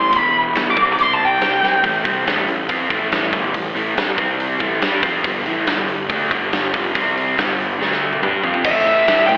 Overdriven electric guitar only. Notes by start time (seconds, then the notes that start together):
Already playing: A2 E3 A3
0.10 E2 B2 E3
0.75 C3 G3 C4
1.83 A2 E3 A3
2.05 C3 G3 C4
2.25 A2 E3 A3
2.47 A2 E3
2.69 F3 C4 F4
2.89 A2 E3 A3
3.31 G2 D3 G3
3.53 A2 E3
3.74 A2 E3 A3
3.95 A2 E3
4.16 C3 G3 C4
4.59 A2 E3 A3
4.81 G3 D4 G4
5.01 F3 C4 F4
5.23 G2 D3 G3
5.45 A2 E3 A3
5.66 G2 D3 G3
5.88 G2 D3
6.09 D3 A3 D4
6.31 G2 D3 G3
6.72 F2 C3 F3
6.94 C3 G3 C4
7.36 G2 D3 G3
7.79 D3 A3 D4
8.22 G3 D4 G4
8.43 F3 C4 F4
8.63 A2 E3 A3